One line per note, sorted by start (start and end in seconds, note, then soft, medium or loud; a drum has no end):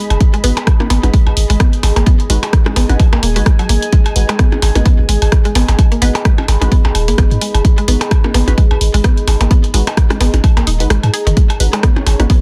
0.00 12.41 G#4 medium
0.00 12.41 D#5 medium
0.00 1.77 B5 medium
0.10 0.17 F#1 loud
0.10 closed hi-hat soft
0.10 percussion blips medium
0.21 kick loud
0.21 closed hi-hat medium
0.34 0.36 G#3 loud
0.34 closed hi-hat soft
0.44 0.52 G#1 loud
0.44 0.51 G#3 medium
0.44 0.48 B3 loud
0.44 0.51 D#4 medium
0.44 0.51 F#4 medium
0.44 0.51 B4 medium
0.44 open hi-hat loud
0.57 closed hi-hat soft
0.57 percussion blips medium
0.67 kick loud
0.67 cross-stick medium
0.67 closed hi-hat soft
0.67 percussion blips medium
0.80 0.83 A#3 medium
0.80 percussion blips loud
0.90 0.99 G#1 medium
0.90 0.93 B3 loud
0.90 open hi-hat medium
0.90 percussion blips medium
1.03 1.10 G#1 medium
1.03 1.09 G#3 medium
1.03 1.09 D#4 medium
1.03 1.09 F#4 medium
1.03 1.09 B4 medium
1.03 closed hi-hat soft
1.03 percussion blips medium
1.14 1.19 G#3 medium
1.14 kick loud
1.14 open hi-hat soft
1.27 1.33 G#1 medium
1.27 percussion blips medium
1.37 1.45 G#1 medium
1.37 open hi-hat medium
1.50 1.56 G#1 loud
1.50 1.52 G#3 loud
1.50 open hi-hat soft
1.60 1.64 B3 loud
1.60 kick loud
1.60 cross-stick medium
1.60 closed hi-hat medium
1.73 5.49 G#5 medium
1.73 closed hi-hat soft
1.83 1.92 G#1 loud
1.83 open hi-hat loud
1.83 percussion blips medium
1.96 2.03 G#1 medium
1.96 1.99 A#3 medium
1.96 closed hi-hat soft
1.96 percussion blips medium
2.06 2.09 B3 loud
2.06 kick loud
2.06 closed hi-hat medium
2.20 closed hi-hat soft
2.30 2.38 G#1 loud
2.30 2.37 G#3 loud
2.30 2.36 G#3 medium
2.30 2.37 D#4 medium
2.30 2.37 F#4 medium
2.30 2.37 B4 loud
2.30 open hi-hat loud
2.43 closed hi-hat soft
2.43 percussion blips medium
2.53 kick loud
2.53 cross-stick medium
2.53 closed hi-hat soft
2.66 2.68 G#3 loud
2.66 cross-stick medium
2.66 percussion blips medium
2.76 2.85 G#1 medium
2.76 2.80 B3 loud
2.76 open hi-hat loud
2.76 percussion blips medium
2.89 2.96 G#1 medium
2.89 2.99 G#3 medium
2.89 2.99 D#4 medium
2.89 2.99 F#4 medium
2.89 2.98 B4 loud
2.89 closed hi-hat soft
2.89 percussion blips medium
3.00 kick loud
3.00 open hi-hat soft
3.00 percussion blips medium
3.13 3.19 G#1 medium
3.13 3.16 A#3 medium
3.13 percussion blips medium
3.23 3.37 D#1 loud
3.23 3.27 A#3 medium
3.23 open hi-hat medium
3.36 3.42 G#1 medium
3.36 3.40 G#3 medium
3.36 3.42 G#3 loud
3.36 3.42 D#4 medium
3.36 3.42 F#4 medium
3.36 3.42 B4 loud
3.36 open hi-hat soft
3.46 3.48 G#3 loud
3.46 kick loud
3.46 cross-stick medium
3.46 closed hi-hat medium
3.59 3.64 F#3 medium
3.59 closed hi-hat soft
3.59 percussion blips medium
3.69 3.78 G#1 medium
3.69 3.73 A#3 medium
3.69 open hi-hat loud
3.82 closed hi-hat soft
3.92 3.98 G#3 medium
3.92 kick loud
3.92 closed hi-hat medium
4.06 closed hi-hat soft
4.06 percussion blips medium
4.16 4.24 G#1 loud
4.16 4.23 G#3 medium
4.16 4.23 D#4 medium
4.16 4.23 F#4 medium
4.16 4.23 B4 medium
4.16 open hi-hat loud
4.29 4.31 G#3 loud
4.29 closed hi-hat soft
4.29 percussion blips medium
4.39 4.43 B3 loud
4.39 kick loud
4.39 cross-stick medium
4.39 closed hi-hat medium
4.52 percussion blips medium
4.62 4.71 G#1 medium
4.62 open hi-hat medium
4.62 percussion blips medium
4.75 4.82 G#1 medium
4.75 4.81 G#3 medium
4.75 4.78 A#3 medium
4.75 4.81 D#4 medium
4.75 4.81 F#4 medium
4.75 4.81 B4 loud
4.75 closed hi-hat soft
4.75 percussion blips medium
4.85 4.88 B3 medium
4.85 kick loud
4.85 open hi-hat soft
4.99 5.05 G#1 medium
5.09 5.17 G#1 medium
5.09 5.15 G#3 medium
5.09 open hi-hat medium
5.22 5.28 G#1 loud
5.22 open hi-hat soft
5.22 percussion blips medium
5.32 kick loud
5.32 cross-stick medium
5.32 closed hi-hat medium
5.45 5.47 G#3 loud
5.45 9.21 B5 medium
5.45 closed hi-hat soft
5.55 5.64 G#1 loud
5.55 5.59 B3 loud
5.55 open hi-hat loud
5.55 percussion blips medium
5.68 5.75 G#1 medium
5.68 closed hi-hat soft
5.68 percussion blips medium
5.79 kick loud
5.79 closed hi-hat medium
5.79 percussion blips medium
5.92 5.95 A#3 medium
5.92 closed hi-hat soft
6.02 6.10 G#1 loud
6.02 6.09 G#3 loud
6.02 6.04 B3 loud
6.02 6.09 D#4 medium
6.02 6.09 F#4 medium
6.02 6.09 B4 loud
6.02 open hi-hat medium
6.15 closed hi-hat soft
6.15 percussion blips medium
6.25 6.31 G#3 medium
6.25 kick loud
6.25 cross-stick medium
6.25 closed hi-hat medium
6.38 percussion blips medium
6.48 6.57 G#1 medium
6.48 open hi-hat medium
6.48 percussion blips medium
6.61 6.68 G#1 medium
6.61 6.63 G#3 loud
6.61 6.71 G#3 medium
6.61 6.71 D#4 medium
6.61 6.71 F#4 medium
6.61 6.71 B4 loud
6.61 closed hi-hat soft
6.61 percussion blips medium
6.72 6.76 B3 loud
6.72 kick loud
6.72 open hi-hat soft
6.85 6.91 G#1 medium
6.85 percussion blips medium
6.95 7.10 D#1 loud
6.95 open hi-hat medium
6.95 percussion blips medium
7.08 7.14 G#1 medium
7.08 7.11 A#3 medium
7.08 open hi-hat soft
7.18 7.26 G#1 loud
7.18 7.21 B3 loud
7.18 kick loud
7.18 cross-stick medium
7.18 closed hi-hat medium
7.31 7.38 G#2 loud
7.31 closed hi-hat soft
7.41 7.47 G#3 medium
7.41 open hi-hat medium
7.54 7.61 F#1 loud
7.54 closed hi-hat soft
7.54 percussion blips medium
7.65 kick loud
7.65 closed hi-hat medium
7.78 7.80 G#3 loud
7.78 closed hi-hat soft
7.88 7.96 G#1 loud
7.88 7.95 G#3 medium
7.88 7.92 B3 loud
7.88 7.95 D#4 medium
7.88 7.95 F#4 medium
7.88 7.95 B4 medium
7.88 open hi-hat medium
8.01 closed hi-hat soft
8.01 percussion blips medium
8.11 kick loud
8.11 cross-stick medium
8.11 closed hi-hat medium
8.11 percussion blips medium
8.24 8.27 A#3 medium
8.24 percussion blips medium
8.34 8.43 G#1 medium
8.34 8.37 B3 loud
8.34 open hi-hat medium
8.34 percussion blips medium
8.48 8.54 G#1 medium
8.48 8.53 G#3 medium
8.48 8.53 D#4 medium
8.48 8.53 F#4 medium
8.48 8.53 B4 medium
8.48 closed hi-hat soft
8.48 percussion blips medium
8.58 8.64 G#3 medium
8.58 kick loud
8.58 open hi-hat soft
8.71 8.77 G#1 medium
8.71 percussion blips medium
8.81 8.89 G#1 medium
8.81 open hi-hat medium
8.94 9.00 G#1 loud
8.94 8.96 G#3 loud
8.94 open hi-hat soft
9.04 9.08 B3 loud
9.04 kick loud
9.04 cross-stick medium
9.04 closed hi-hat medium
9.17 12.41 A#5 medium
9.17 closed hi-hat soft
9.28 9.36 G#1 loud
9.28 open hi-hat medium
9.28 percussion blips medium
9.41 9.47 G#1 medium
9.41 9.44 A#3 medium
9.41 closed hi-hat soft
9.41 percussion blips medium
9.51 9.53 B3 loud
9.51 kick loud
9.51 closed hi-hat medium
9.64 closed hi-hat soft
9.74 9.82 G#1 loud
9.74 9.80 G#3 medium
9.74 9.81 G#3 medium
9.74 9.81 D#4 medium
9.74 9.81 F#4 medium
9.74 9.81 B4 loud
9.74 open hi-hat medium
9.87 closed hi-hat soft
9.87 percussion blips medium
9.97 kick loud
9.97 cross-stick medium
9.97 closed hi-hat medium
10.10 10.12 G#3 loud
10.10 cross-stick medium
10.10 closed hi-hat soft
10.10 percussion blips loud
10.20 10.29 G#1 medium
10.20 10.24 B3 loud
10.20 open hi-hat medium
10.20 percussion blips medium
10.34 10.40 G#1 medium
10.34 closed hi-hat soft
10.34 percussion blips medium
10.44 kick loud
10.44 open hi-hat soft
10.44 percussion blips medium
10.57 10.63 G#1 medium
10.57 10.60 A#3 medium
10.57 closed hi-hat soft
10.57 percussion blips medium
10.67 10.82 D#1 loud
10.67 10.71 D#4 medium
10.67 open hi-hat medium
10.80 10.87 G#1 medium
10.80 10.86 G#3 loud
10.80 10.86 D#4 medium
10.80 10.86 F#4 medium
10.80 10.86 B4 loud
10.80 open hi-hat soft
10.90 10.99 G#1 loud
10.90 10.94 G#3 loud
10.90 cross-stick medium
10.90 closed hi-hat medium
11.03 11.10 G#2 loud
11.03 closed hi-hat soft
11.03 percussion blips medium
11.14 11.19 G#4 loud
11.14 open hi-hat medium
11.27 11.33 F#1 loud
11.27 11.31 D#3 loud
11.27 closed hi-hat soft
11.37 11.43 G#3 medium
11.37 12.41 C#4 medium
11.37 12.41 C#5 medium
11.37 kick loud
11.37 closed hi-hat medium
11.50 closed hi-hat soft
11.50 percussion blips medium
11.60 11.68 G#1 loud
11.60 11.67 G#3 medium
11.60 11.67 D#4 medium
11.60 11.67 F#4 medium
11.60 11.67 B4 medium
11.60 open hi-hat loud
11.73 11.75 G#3 loud
11.73 closed hi-hat soft
11.73 percussion blips medium
11.83 11.87 B3 loud
11.83 kick loud
11.83 cross-stick loud
11.83 closed hi-hat medium
11.96 percussion blips loud
12.07 12.15 G#1 medium
12.07 open hi-hat medium
12.07 percussion blips medium
12.20 12.26 G#1 medium
12.20 12.25 G#3 medium
12.20 12.23 A#3 medium
12.20 12.25 D#4 medium
12.20 12.25 F#4 medium
12.20 12.25 B4 medium
12.20 closed hi-hat soft
12.20 percussion blips medium
12.30 12.32 B3 loud
12.30 kick loud
12.30 open hi-hat soft